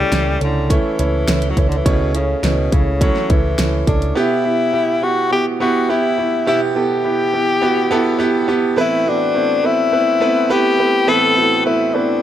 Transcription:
Already playing: C#3 G3 A3 C#4 E4 C#5
0.11 C#2 A3 C#4 E4 C#5, snare, closed hi-hat
0.41 C#2 D3 A3 C#4 E4 C#5, closed hi-hat
0.70 E3 A3 C#4 E4 C#5, kick, closed hi-hat
0.99 C#2 A3 C#4 E4 C#5, closed hi-hat
1.28 C#2 A3 C#4 E4 C#5, snare, closed hi-hat
1.42 closed hi-hat
1.50 F#3
1.57 C#2 E3 A3 C#4 E4 C#5, kick, closed hi-hat
1.68 D3, closed hi-hat
1.77 E3
1.85 C#2 B2 C#3 A3 C#4 E4 C#5, kick, closed hi-hat
2.14 C#3 A3 C#4 E4 C#5, closed hi-hat
2.42 C#2 B2 A3 C#4 E4 C#5, snare, closed hi-hat
2.72 C#2 C#3 A3 C#4 E4 C#5, kick, closed hi-hat
3.01 F#3 A3 C#4 E4 C#5, kick, closed hi-hat
3.16 snare
3.30 C#2 E3 A3 C#4 E4 C#5, kick, closed hi-hat
3.58 C#2 A3 C#4 E4 C#5, snare, closed hi-hat
3.87 C#2 A3 C#4 D4 E4 A4, kick, closed hi-hat
4.02 closed hi-hat
4.15 B2 B3 E4 G4
4.44 B3 E4 G4
4.73 B3 E4 G4
5.02 B3 E4 F#4 G4
5.31 B3 E4 F#4 G4
5.60 B3 E4 F#4 G4
5.89 B3 E4 G4
6.18 B3 E4 G4
6.47 B2 B3 E4 G4
6.75 B3 E4 G4 A4
7.04 B3 E4 G4
7.33 B3 E4 G4
7.62 B3 E4 F#4
7.91 B3 E4 A4
8.19 B3 E4 G4
8.48 B3 E4 G4
8.76 A2 E3 A3 B3 C4 E4 B4
8.81 E4
9.06 A3 B3 C4 D4 E4 F#4
9.34 A3 B3 C4 E4 C5
9.63 A3 B3 C4 E4 B4
9.92 A3 B3 C4 E4 B4
10.20 A3 B3 C4 E4 B4
10.50 A3 B3 C4 E4 G4 B4
10.79 A3 B3 C4 E4 B4
11.07 A2 E3 A3 B3 C4 E4 A4 B4
11.36 A3 B3 C4 E4 F#4
11.65 A3 B3 C4 E4 B4
11.94 A3 B3 C4 D4 E4 B4

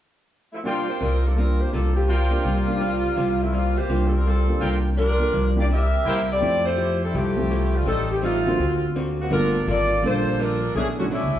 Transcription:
0.53 F3 A3 C4 E4
0.64 C3 G3 A#3 C4 D4 F4 G4 A#4 C5 G5
0.89 A#3 F4 G4 C5
1.01 C2 C3 G3 A#3 C4 F4 A#4
1.25 F3 A#3 D4 A4
1.36 C3 G3 A#3 C4 D4 F4 G4 A#4
1.60 A#3 F4 G4 C5
1.72 C2 C3 F3 G3 A#3 D4 F4 A4
1.95 F3 A#3 C4 G4
2.08 C3 G3 A#3 C4 F4 A#4 C5 G5
2.30 A#3 D4 F4 G4
2.45 C2 C3 G3 A#3 F4
2.67 A#3 D4 F4 G4
2.80 C3 G3 A#3 F4
3.16 C2 C3 G3 A#3 F4
3.41 F3 A3 C4 E4
3.52 C3 G3 A#3 C4 F4
3.78 A#3 F4 G4 C5
3.89 C2 C3 G3 A#3 D4 F4 G4
4.07 A4
4.13 G3 C4 F4 A#4
4.26 C3 G3 A#3 C4 F4 A4
4.47 A#3 D4 F4 G4
4.60 C2 C3 G3 A#3 F4 A#4 C5 G5
4.97 G2 F3 G3 A#3 D4 F4 A#4
5.19 A#3 D4 F4 A4
5.32 C2 G2 F3 A#3 D4
5.56 A#3 D4 E4 G4
5.60 A#3 F4 D5
5.69 C3 G3 A#3 C4 E4 A#4 E5
5.73 G4
6.05 C2 C3 G3 A#3 E4 G4 A#4 C5 G5
6.09 A#3 E4
6.32 C4 G4 A4 D5
6.40 F2 F3 A3 C4 E4 G4
6.66 A3 E4 G4 C5
6.77 F3 A3 E4 G4
7.03 G3 C4 E4 A4
7.13 C2 E3 F3 A3 C4 E4 G4
7.36 F3 A3 C4 E4 A4
7.51 F3 A3 E4 G4
7.75 G3 A3 C4 F4
7.86 A1 A2 G3 C4 D#4 A4
8.11 D#3 A3 C4 G4
8.22 A2 G3 A3 C4 D#4 F4
8.46 D3 F#3 A#3 C4 F4
8.59 D2 D3 A#3 C4 F#4
8.96 D3 A#3 C4 F#4
9.20 C3 F3 A#3 F#4
9.30 G1 D3 F3 G3 A3 A#3 D4 F4 A4 A#4
9.67 G#1 G3 A#3 F4 A4 D5
10.02 A#1 D3 G3 A#3 D4 F4 A4 C5
10.39 F3 G3 A#3 D4 F4 A4 A#4
10.75 B1 B2 E3 A3 C#4 D4 E4 G#4
10.98 D3 F#3 A3 C#4 E4 F#4
11.11 B2 A3 C#4 D4 E4
11.23 C#2
11.35 B1

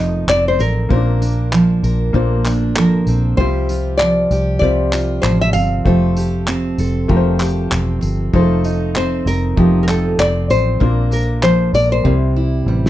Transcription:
Already playing: F1 F3 A3 C4 D#4 F4 C5 D#5
0.27 F1 C4 D5, clap
0.48 C5
0.59 A1 C4 A#4, tambourine
0.89 A#1 A#2 A#3 C#4 F4 A#4 C5, kick
0.96 D4
1.22 D4, tambourine
1.53 F3, clap
1.83 A#1 A#4, tambourine
2.13 A#1 A#2 A#3 D4 F4 C5, kick
2.45 D4, clap, tambourine
2.76 G1 F3 A#4, clap
3.07 A#1 C4, tambourine
3.37 C2 C3 G3 C4 F4 G4 C5, kick
3.69 F4, tambourine
3.98 F3 D5, clap
4.31 C2 G4, tambourine
4.59 C2 G3 C4 F4 C5 D5, kick
4.64 C3
4.93 F4, clap, tambourine
5.22 A1 F3 C5, clap
5.41 E5
5.53 G1 C4 F5, tambourine
5.85 F1 F3 A3 F4 G4 A4 C5, kick
6.17 G4, tambourine
6.47 C4, clap
6.78 F1 A4, tambourine
7.08 F1 F3 A3 F4 G4 A#4, kick
7.17 C5
7.40 G4, clap, tambourine
7.71 E1 C4, clap
8.01 G1 C4, tambourine
8.33 F1 F3 G#3 D#4 F4 A4 C5, kick
8.40 A3
8.64 D#4, tambourine
8.96 C4 C5, clap
9.26 F1 A#4, tambourine
9.56 F1 F3 A3 D#4 F4 G4, kick
9.83 A#4
9.88 D#4 A4, clap, tambourine
10.18 F1 C4 D5, clap
10.50 A1 C4 C5, tambourine
10.80 A#1 A#2 A#3 D4 F4 A#4 C5, kick
11.11 D4 A#4, tambourine
11.43 F3 C5, clap
11.73 A#1 A#4 D5, tambourine
11.92 C5
12.04 C2 C3 G3 C4 E4 C5, kick
12.36 E4
12.66 A1 G3
12.86 snare

